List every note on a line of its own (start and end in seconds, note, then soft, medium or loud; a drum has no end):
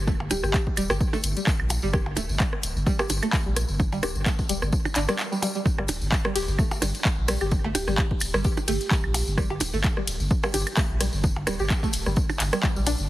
0.00 0.15 G1 medium
0.07 0.11 A3 loud
0.07 kick loud
0.07 tambourine soft
0.07 percussion blips medium
0.20 0.29 G1 medium
0.20 percussion blips medium
0.31 0.41 D1 loud
0.31 0.33 G3 medium
0.31 0.39 G4 medium
0.31 closed hi-hat medium
0.31 tambourine medium
0.31 percussion blips medium
0.43 0.52 G1 medium
0.43 0.50 G4 medium
0.43 cross-stick soft
0.43 tambourine soft
0.54 kick loud
0.54 clap medium
0.54 closed hi-hat soft
0.54 tambourine soft
0.67 kick medium
0.77 0.88 D1 medium
0.77 0.83 G3 loud
0.77 closed hi-hat medium
0.77 tambourine medium
0.77 claves medium
0.90 0.98 G1 loud
0.90 0.92 G4 loud
0.90 cross-stick medium
0.90 tambourine soft
1.01 kick loud
1.01 tambourine soft
1.13 1.16 A3 loud
1.13 tambourine soft
1.13 percussion blips medium
1.24 1.34 G1 medium
1.24 closed hi-hat medium
1.24 tambourine medium
1.37 1.39 G3 medium
1.37 closed hi-hat soft
1.37 tambourine soft
1.47 kick loud
1.47 cross-stick soft
1.47 clap medium
1.47 tambourine medium
1.60 1.78 A#1 medium
1.60 claves medium
1.70 closed hi-hat medium
1.70 tambourine medium
1.70 percussion blips medium
1.82 2.02 G1 medium
1.82 1.88 G3 loud
1.82 tambourine soft
1.93 1.96 G4 loud
1.93 kick loud
1.93 cross-stick medium
1.93 tambourine soft
1.93 percussion blips medium
2.06 2.15 G1 medium
2.06 percussion blips medium
2.17 2.27 D1 loud
2.17 2.21 A3 loud
2.17 closed hi-hat medium
2.17 tambourine medium
2.17 percussion blips loud
2.29 2.38 G1 medium
2.29 tambourine soft
2.40 2.42 G3 medium
2.40 kick loud
2.40 clap medium
2.40 closed hi-hat soft
2.40 tambourine soft
2.40 claves medium
2.53 cross-stick soft
2.63 2.74 D1 medium
2.63 closed hi-hat medium
2.63 tambourine medium
2.76 2.85 G1 loud
2.76 tambourine soft
2.86 2.92 G3 loud
2.86 kick loud
2.86 tambourine soft
2.99 3.01 G4 loud
2.99 cross-stick medium
2.99 tambourine soft
2.99 percussion blips medium
3.10 3.20 G1 medium
3.10 closed hi-hat medium
3.10 tambourine medium
3.10 percussion blips medium
3.23 3.26 A3 loud
3.23 closed hi-hat soft
3.23 tambourine soft
3.23 claves medium
3.33 kick loud
3.33 clap medium
3.33 tambourine soft
3.46 3.64 A#1 medium
3.46 3.48 G3 medium
3.56 cross-stick soft
3.56 closed hi-hat medium
3.56 tambourine medium
3.68 3.88 G1 medium
3.68 tambourine soft
3.80 kick loud
3.80 tambourine soft
3.80 percussion blips medium
3.92 4.01 G1 medium
3.92 3.97 G3 loud
3.92 tambourine soft
3.92 percussion blips soft
4.03 4.13 D1 loud
4.03 4.05 G4 loud
4.03 cross-stick medium
4.03 closed hi-hat medium
4.03 tambourine medium
4.03 percussion blips loud
4.03 claves medium
4.15 4.24 G1 medium
4.15 tambourine soft
4.26 4.30 A3 loud
4.26 kick loud
4.26 clap medium
4.26 closed hi-hat soft
4.26 tambourine medium
4.39 kick medium
4.39 tambourine soft
4.49 4.60 D1 medium
4.49 4.52 G3 medium
4.49 closed hi-hat loud
4.49 tambourine medium
4.62 4.71 G1 loud
4.62 cross-stick soft
4.62 tambourine soft
4.72 kick loud
4.72 tambourine medium
4.85 tambourine soft
4.85 percussion blips medium
4.85 claves medium
4.95 5.06 G1 medium
4.95 5.00 D4 loud
4.95 clap medium
4.95 closed hi-hat medium
4.95 tambourine medium
5.08 5.13 G3 loud
5.08 cross-stick medium
5.08 closed hi-hat soft
5.08 tambourine soft
5.19 clap medium
5.19 tambourine soft
5.32 5.35 G3 medium
5.32 tambourine soft
5.42 5.46 G3 loud
5.42 closed hi-hat medium
5.42 tambourine medium
5.42 percussion blips medium
5.55 5.58 G3 medium
5.55 tambourine soft
5.66 kick loud
5.66 tambourine soft
5.66 percussion blips medium
5.78 5.87 G1 loud
5.78 5.81 G3 medium
5.78 cross-stick soft
5.78 percussion blips soft
5.78 claves medium
5.88 5.99 D1 loud
5.88 closed hi-hat medium
5.88 ride medium
5.88 tambourine loud
5.88 percussion blips loud
6.02 6.10 G1 medium
6.02 tambourine soft
6.12 kick loud
6.12 clap medium
6.12 closed hi-hat soft
6.12 tambourine medium
6.25 6.30 G3 loud
6.25 cross-stick medium
6.35 6.46 D1 medium
6.35 6.38 G4 loud
6.35 closed hi-hat loud
6.35 ride medium
6.35 tambourine medium
6.48 6.57 G1 loud
6.48 tambourine soft
6.59 6.62 A3 loud
6.59 kick loud
6.59 tambourine medium
6.59 claves medium
6.71 tambourine soft
6.71 percussion blips medium
6.82 6.92 G1 medium
6.82 6.84 G3 medium
6.82 cross-stick soft
6.82 closed hi-hat medium
6.82 ride medium
6.82 tambourine loud
6.82 percussion blips medium
6.95 closed hi-hat soft
6.95 tambourine soft
7.05 kick loud
7.05 clap loud
7.05 tambourine soft
7.18 7.36 A#1 medium
7.28 7.34 G3 loud
7.28 cross-stick medium
7.28 closed hi-hat loud
7.28 ride medium
7.28 tambourine medium
7.41 7.60 G1 medium
7.41 7.43 G4 loud
7.41 tambourine soft
7.41 claves medium
7.51 kick loud
7.51 tambourine soft
7.51 percussion blips medium
7.64 7.73 G1 loud
7.64 7.68 A3 loud
7.64 percussion blips medium
7.75 7.85 D1 loud
7.75 7.83 G4 medium
7.75 closed hi-hat loud
7.75 ride medium
7.75 tambourine medium
7.75 percussion blips loud
7.87 7.96 G1 medium
7.87 7.90 G3 medium
7.87 7.94 G4 medium
7.87 cross-stick soft
7.87 tambourine soft
7.98 kick loud
7.98 clap loud
7.98 closed hi-hat soft
7.98 tambourine medium
8.11 kick medium
8.20 8.32 D1 medium
8.20 closed hi-hat loud
8.20 ride medium
8.20 tambourine medium
8.20 claves medium
8.34 8.43 G1 loud
8.34 8.39 G3 loud
8.34 cross-stick medium
8.34 tambourine soft
8.44 8.47 G4 loud
8.44 kick loud
8.44 tambourine medium
8.57 tambourine soft
8.57 percussion blips medium
8.68 8.78 G1 medium
8.68 8.72 A3 loud
8.68 9.33 G4 loud
8.68 closed hi-hat loud
8.68 ride medium
8.68 tambourine medium
8.81 closed hi-hat soft
8.81 tambourine soft
8.91 8.93 G3 medium
8.91 kick loud
8.91 cross-stick soft
8.91 clap loud
8.91 tambourine medium
9.04 9.22 A#1 medium
9.04 claves medium
9.14 closed hi-hat medium
9.14 ride medium
9.14 tambourine loud
9.14 percussion blips medium
9.27 9.46 G1 medium
9.27 tambourine soft
9.38 9.43 G3 loud
9.38 kick loud
9.38 cross-stick medium
9.38 tambourine medium
9.38 percussion blips medium
9.50 9.59 G1 medium
9.50 9.52 G4 loud
9.50 percussion blips medium
9.60 9.71 D1 loud
9.60 closed hi-hat loud
9.60 ride medium
9.60 tambourine loud
9.60 percussion blips loud
9.74 9.82 G1 medium
9.74 9.77 A3 loud
9.74 tambourine soft
9.84 kick loud
9.84 clap medium
9.84 closed hi-hat soft
9.84 tambourine medium
9.84 claves medium
9.97 9.99 G3 medium
9.97 cross-stick soft
10.07 10.18 D1 medium
10.07 closed hi-hat loud
10.07 ride medium
10.07 tambourine loud
10.20 10.29 G1 loud
10.20 tambourine soft
10.31 kick loud
10.31 tambourine medium
10.43 10.48 G3 loud
10.43 cross-stick medium
10.43 tambourine soft
10.43 percussion blips medium
10.54 10.64 G1 medium
10.54 10.56 G4 loud
10.54 closed hi-hat loud
10.54 ride medium
10.54 tambourine loud
10.54 percussion blips medium
10.67 closed hi-hat soft
10.67 tambourine soft
10.67 claves medium
10.77 10.81 A3 loud
10.77 kick loud
10.77 clap loud
10.77 tambourine medium
10.90 11.08 A#1 medium
11.00 11.03 G3 medium
11.00 cross-stick soft
11.00 closed hi-hat loud
11.00 ride medium
11.00 tambourine medium
11.13 11.32 G1 medium
11.13 tambourine soft
11.24 kick loud
11.24 tambourine medium
11.24 percussion blips medium
11.36 11.45 G1 loud
11.36 percussion blips medium
11.47 11.57 D1 loud
11.47 11.53 G3 loud
11.47 cross-stick medium
11.47 closed hi-hat loud
11.47 ride medium
11.47 tambourine loud
11.47 percussion blips medium
11.47 claves medium
11.59 11.68 G1 medium
11.59 11.62 G4 loud
11.59 tambourine soft
11.70 kick loud
11.70 clap medium
11.70 closed hi-hat soft
11.70 tambourine soft
11.83 11.86 A3 loud
11.83 kick medium
11.83 tambourine soft
11.93 12.04 D1 medium
11.93 closed hi-hat medium
11.93 ride medium
11.93 tambourine medium
12.06 12.15 G1 loud
12.06 12.08 G3 medium
12.06 cross-stick soft
12.06 tambourine soft
12.16 kick loud
12.16 tambourine medium
12.30 tambourine soft
12.30 percussion blips medium
12.30 claves medium
12.40 12.50 G1 medium
12.40 clap medium
12.40 closed hi-hat loud
12.40 ride medium
12.40 tambourine loud
12.53 12.57 G3 loud
12.53 cross-stick medium
12.53 closed hi-hat soft
12.53 tambourine soft
12.63 12.66 G3 loud
12.63 kick loud
12.63 clap medium
12.63 tambourine medium
12.76 12.95 A#1 medium
12.76 12.79 G3 medium
12.76 tambourine soft
12.86 12.89 D4 loud
12.86 closed hi-hat medium
12.86 ride medium
12.86 tambourine loud
12.86 percussion blips medium
12.98 13.10 G1 medium
12.98 tambourine soft